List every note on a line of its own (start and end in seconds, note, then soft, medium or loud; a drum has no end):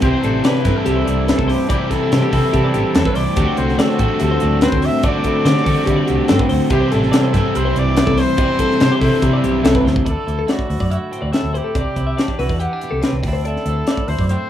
0.00 0.11 C2 medium
0.00 0.68 C3 loud
0.00 0.66 C3 medium
0.00 0.64 D3 medium
0.00 0.67 E3 medium
0.00 1.29 G3 medium
0.00 0.66 G3 medium
0.00 0.23 C4 medium
0.00 0.13 G4 medium
0.00 0.47 C5 loud
0.00 kick loud
0.00 closed hi-hat medium
0.04 0.65 C4 medium
0.04 0.64 E4 loud
0.14 0.24 C5 medium
0.23 0.39 A1 medium
0.23 1.73 D4 medium
0.23 0.45 A4 medium
0.23 closed hi-hat medium
0.44 0.79 B4 loud
0.44 0.55 D5 medium
0.44 snare loud
0.44 closed hi-hat medium
0.55 0.65 C5 medium
0.55 snare soft
0.64 0.73 G2 medium
0.64 1.67 E3 medium
0.64 1.69 E3 medium
0.64 1.70 G3 medium
0.64 1.72 C4 medium
0.64 1.68 E4 medium
0.64 0.86 A4 medium
0.64 kick medium
0.64 snare soft
0.64 closed hi-hat medium
0.68 1.68 C3 medium
0.77 0.85 A4 medium
0.86 1.02 C2 medium
0.86 2.52 E4 medium
0.86 0.96 G4 medium
0.86 1.51 A4 medium
0.86 closed hi-hat medium
0.96 1.05 C5 medium
1.05 1.31 C2 medium
1.05 1.67 G2 medium
1.05 1.27 D5 medium
1.05 closed hi-hat medium
1.27 1.95 A3 medium
1.27 1.38 B4 medium
1.27 snare loud
1.27 closed hi-hat medium
1.38 1.55 C2 medium
1.38 1.49 A4 medium
1.38 kick medium
1.48 1.70 G4 medium
1.48 1.69 C5 medium
1.48 snare soft
1.48 open hi-hat medium
1.69 2.31 C3 medium
1.69 2.33 C3 medium
1.69 2.31 E3 loud
1.69 2.33 G3 medium
1.69 2.32 C4 medium
1.69 2.30 E4 loud
1.69 1.92 G4 medium
1.69 1.80 D5 loud
1.69 kick loud
1.69 closed hi-hat medium
1.80 1.91 C5 medium
1.91 2.03 B3 medium
1.91 2.12 A4 medium
1.91 3.17 A4 loud
1.91 kick medium
1.91 snare soft
1.91 closed hi-hat medium
2.03 3.38 D4 medium
2.12 2.20 C3 medium
2.12 2.22 C5 medium
2.12 snare loud
2.12 closed hi-hat medium
2.23 2.33 G4 medium
2.32 2.41 C3 loud
2.32 3.37 C3 medium
2.32 3.35 E3 medium
2.32 3.36 E3 medium
2.32 3.38 G3 medium
2.32 3.39 C4 medium
2.32 3.35 E4 medium
2.32 2.54 A4 medium
2.32 kick medium
2.32 open hi-hat medium
2.53 2.69 C3 medium
2.53 3.37 E4 medium
2.53 2.64 G4 medium
2.53 kick medium
2.53 closed hi-hat medium
2.64 2.75 D5 medium
2.73 2.82 A1 medium
2.73 3.34 G2 medium
2.73 2.95 G4 medium
2.73 closed hi-hat medium
2.94 3.03 E2 loud
2.94 3.06 G3 medium
2.94 3.06 A4 medium
2.94 snare loud
2.94 closed hi-hat loud
3.05 3.37 A3 medium
3.05 3.16 B4 medium
3.05 kick medium
3.15 3.24 C2 medium
3.15 3.37 C5 medium
3.15 3.59 D5 loud
3.15 open hi-hat medium
3.36 3.45 D2 loud
3.36 4.03 D3 medium
3.36 5.03 D3 medium
3.36 3.98 G3 medium
3.36 4.02 A3 loud
3.36 4.63 C4 medium
3.36 4.00 C4 loud
3.36 3.47 G4 medium
3.36 4.19 G4 medium
3.36 kick loud
3.36 closed hi-hat medium
3.40 3.98 F#4 loud
3.47 3.58 C5 medium
3.57 3.74 C2 medium
3.57 3.78 A4 medium
3.57 3.81 C5 medium
3.57 closed hi-hat medium
3.69 snare soft
3.79 4.21 A4 loud
3.79 3.90 D5 medium
3.79 snare loud
3.79 closed hi-hat loud
3.90 4.00 C5 medium
3.90 snare soft
3.98 4.08 A1 loud
3.98 5.67 G3 medium
3.98 5.05 A3 medium
3.98 5.06 C4 medium
3.98 5.03 F#4 medium
3.98 4.21 A4 medium
3.98 kick medium
3.98 closed hi-hat medium
4.03 5.02 D3 medium
4.20 4.37 D2 loud
4.20 4.31 E4 medium
4.20 4.31 G4 medium
4.20 4.64 A4 loud
4.20 closed hi-hat medium
4.31 4.42 C5 medium
4.40 4.66 D2 loud
4.40 5.04 A2 medium
4.40 4.62 D5 medium
4.40 closed hi-hat medium
4.61 5.08 C4 medium
4.61 4.73 B4 medium
4.61 4.87 C5 loud
4.61 snare loud
4.61 closed hi-hat medium
4.72 4.88 D2 medium
4.72 4.82 A4 medium
4.72 kick medium
4.82 5.03 C5 medium
4.82 5.05 E5 loud
4.82 open hi-hat medium
5.03 5.65 D3 medium
5.03 7.34 D3 medium
5.03 5.68 A3 medium
5.03 5.67 C4 loud
5.03 5.14 D5 medium
5.03 6.27 D5 loud
5.03 kick loud
5.03 closed hi-hat medium
5.07 5.65 F#4 loud
5.14 5.25 C5 medium
5.24 5.37 E4 medium
5.24 5.46 A4 medium
5.24 kick medium
5.24 closed hi-hat medium
5.45 5.53 D3 loud
5.45 5.56 C5 medium
5.45 snare loud
5.45 closed hi-hat medium
5.55 5.64 G4 medium
5.55 snare soft
5.64 5.74 D3 loud
5.64 7.96 G3 medium
5.64 6.73 C4 medium
5.64 6.70 F#4 medium
5.64 5.85 A4 medium
5.64 kick medium
5.64 open hi-hat medium
5.68 6.71 D3 medium
5.68 6.72 A3 medium
5.86 6.03 D3 medium
5.86 5.97 G4 medium
5.86 kick medium
5.86 closed hi-hat medium
5.90 5.99 E4 medium
5.96 6.08 D5 medium
6.07 6.17 C2 loud
6.07 6.71 A2 medium
6.07 6.29 G4 medium
6.07 closed hi-hat medium
6.28 6.38 G2 loud
6.28 6.95 C4 medium
6.28 6.39 A4 medium
6.28 snare loud
6.28 closed hi-hat medium
6.39 6.49 B4 medium
6.39 kick medium
6.49 6.59 D2 medium
6.49 6.71 C5 medium
6.49 open hi-hat medium
6.70 6.79 C2 medium
6.70 7.36 C3 loud
6.70 7.34 C3 medium
6.70 7.36 E3 loud
6.70 7.35 G3 loud
6.70 7.34 C4 loud
6.70 6.81 G4 medium
6.70 6.94 G4 loud
6.70 kick loud
6.70 closed hi-hat medium
6.74 7.32 E4 loud
6.81 6.91 C5 medium
6.91 7.09 A1 medium
6.91 8.42 D4 medium
6.91 7.11 A4 medium
6.91 7.58 A4 medium
6.91 snare soft
6.91 closed hi-hat medium
7.03 snare soft
7.12 7.23 D5 medium
7.12 snare loud
7.12 closed hi-hat loud
7.23 7.34 C5 medium
7.33 7.42 G2 loud
7.33 8.36 C3 medium
7.33 8.63 E3 medium
7.33 8.38 E3 medium
7.33 8.38 G3 medium
7.33 8.40 C4 medium
7.33 8.41 E4 medium
7.33 7.55 A4 medium
7.33 kick medium
7.33 snare soft
7.33 closed hi-hat medium
7.55 7.71 C2 loud
7.55 9.21 E4 medium
7.55 7.65 G4 medium
7.55 7.80 C5 loud
7.55 closed hi-hat loud
7.65 7.75 C5 medium
7.75 8.00 C2 loud
7.75 8.36 G2 medium
7.75 7.96 D5 medium
7.75 8.21 D5 loud
7.75 closed hi-hat medium
7.96 8.08 G3 medium
7.96 8.07 B4 medium
7.96 snare loud
7.96 closed hi-hat loud
8.07 8.23 C2 medium
8.07 8.39 A3 medium
8.07 8.17 A4 medium
8.07 kick medium
8.17 8.39 C5 medium
8.17 9.66 C5 loud
8.17 snare soft
8.17 open hi-hat medium
8.37 9.00 C3 medium
8.37 9.02 C3 medium
8.37 9.00 E3 loud
8.37 9.01 G3 loud
8.37 9.01 C4 loud
8.37 8.49 D5 medium
8.37 kick loud
8.37 closed hi-hat medium
8.41 9.00 E4 medium
8.49 8.59 C5 medium
8.59 10.05 D4 medium
8.59 8.80 A4 medium
8.59 kick medium
8.59 closed hi-hat medium
8.71 snare soft
8.80 8.89 C3 loud
8.80 8.91 C5 medium
8.80 snare loud
8.80 closed hi-hat medium
8.92 9.01 G4 medium
9.00 9.09 C3 loud
9.00 10.04 E3 medium
9.00 10.07 E3 medium
9.00 10.07 G3 medium
9.00 10.06 C4 medium
9.00 10.05 E4 medium
9.00 9.23 A4 medium
9.00 kick medium
9.00 open hi-hat medium
9.05 10.07 C3 medium
9.22 9.38 C3 loud
9.22 10.04 E4 medium
9.22 9.33 G4 medium
9.22 kick medium
9.22 closed hi-hat medium
9.33 9.44 D5 medium
9.41 9.63 B1 medium
9.41 10.03 G2 medium
9.41 9.64 G4 medium
9.41 closed hi-hat medium
9.63 9.84 C2 medium
9.63 10.04 A3 medium
9.63 9.75 A4 medium
9.63 snare loud
9.63 closed hi-hat medium
9.75 9.85 B4 medium
9.75 kick medium
9.85 10.04 D2 medium
9.85 10.06 C5 medium
9.85 snare medium
9.96 kick loud
10.05 10.15 D2 medium
10.05 12.17 D3 medium
10.05 10.26 E4 medium
10.05 10.27 D5 medium
10.05 kick loud
10.05 closed hi-hat medium
10.10 10.52 A4 medium
10.27 10.44 D2 medium
10.27 10.47 E4 medium
10.27 10.38 C5 medium
10.27 closed hi-hat medium
10.39 10.49 A4 medium
10.47 11.72 A3 medium
10.47 10.69 E4 medium
10.47 10.92 F#4 medium
10.47 10.71 D5 medium
10.47 snare loud
10.47 closed hi-hat medium
10.59 kick medium
10.69 10.78 D2 loud
10.69 10.90 E4 medium
10.69 10.80 C5 medium
10.69 open hi-hat medium
10.80 10.96 F#2 medium
10.80 10.91 D5 medium
10.80 kick medium
10.90 11.33 E4 medium
10.90 11.35 F#4 medium
10.90 11.12 E5 medium
10.90 closed hi-hat medium
11.11 11.74 A2 medium
11.11 11.75 C4 medium
11.11 11.21 C5 medium
11.11 closed hi-hat medium
11.22 11.30 D2 medium
11.22 11.32 D5 medium
11.33 11.52 E4 medium
11.33 11.58 A4 medium
11.33 11.54 E5 medium
11.33 snare loud
11.33 closed hi-hat medium
11.43 11.59 D2 medium
11.53 11.96 E4 medium
11.53 12.41 G4 medium
11.53 11.65 C5 medium
11.53 closed hi-hat medium
11.64 11.75 A4 medium
11.75 11.84 C2 medium
11.75 12.18 C3 medium
11.75 12.18 D4 medium
11.75 11.96 D5 medium
11.75 kick loud
11.75 closed hi-hat medium
11.96 12.13 C2 medium
11.96 12.39 E4 medium
11.96 12.06 C5 medium
11.96 kick medium
11.96 closed hi-hat medium
12.07 12.17 E5 medium
12.17 13.26 E3 medium
12.17 12.60 D4 medium
12.17 12.39 D5 medium
12.17 snare loud
12.17 closed hi-hat medium
12.28 kick medium
12.28 snare soft
12.39 12.47 C2 loud
12.39 13.28 E4 medium
12.39 12.59 F#4 medium
12.39 12.50 B4 medium
12.39 open hi-hat medium
12.49 12.66 E2 medium
12.49 12.60 D5 medium
12.49 kick medium
12.60 12.73 B3 medium
12.60 13.20 G4 medium
12.60 12.80 F#5 medium
12.60 closed hi-hat medium
12.73 13.25 D4 soft
12.80 13.04 B2 medium
12.80 12.92 D5 medium
12.80 closed hi-hat medium
12.91 13.00 C2 medium
12.91 13.02 A4 medium
13.02 13.25 C3 medium
13.02 13.23 B4 medium
13.02 snare loud
13.02 closed hi-hat medium
13.13 13.21 C2 medium
13.23 13.56 D2 medium
13.23 14.50 D3 medium
13.23 13.33 D5 medium
13.23 kick medium
13.23 open hi-hat medium
13.27 13.67 A3 soft
13.27 14.31 C4 medium
13.27 13.47 E4 medium
13.33 13.44 C5 medium
13.44 13.68 E4 medium
13.44 14.10 A4 loud
13.44 13.66 D5 medium
13.44 closed hi-hat medium
13.56 snare soft
13.66 13.82 D2 medium
13.66 14.50 A3 medium
13.66 13.90 E4 medium
13.66 13.77 C5 medium
13.66 closed hi-hat medium
13.77 13.87 A4 medium
13.87 14.09 E4 medium
13.87 14.09 D5 medium
13.87 snare loud
13.87 closed hi-hat medium
13.97 kick medium
14.08 14.16 D2 loud
14.08 14.50 E4 medium
14.08 14.28 C5 loud
14.08 14.19 C5 medium
14.08 open hi-hat medium
14.19 14.35 F#2 medium
14.19 14.31 D5 medium
14.19 kick medium
14.29 14.50 A2 medium
14.29 14.50 C4 medium
14.29 14.50 C5 loud
14.29 14.50 E5 medium
14.29 closed hi-hat medium